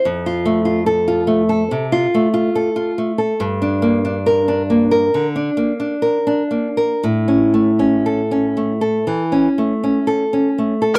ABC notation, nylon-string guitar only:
X:1
M:4/4
L:1/16
Q:1/4=69
K:Flyd
V:1 name="Nylon-string guitar"
F,, F A, F A F A, A C, F A, F A F A, A | [K:Aphr] G,, D B, D B D B, B D, D B, D B D B, B | A,, ^C A, C A C A, A E, C A, C A C A, A |]